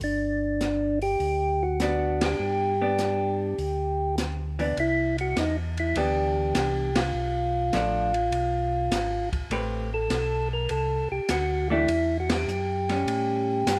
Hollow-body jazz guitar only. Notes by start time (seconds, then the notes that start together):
1.81 B3 D4
2.82 B3 D4
4.59 E3 B3 D4
5.97 E3 B3 D4
7.74 F3 A3 D4
9.52 A3 C4 G4 B4
11.70 E3 A3 D4 G4
12.90 G3 C#4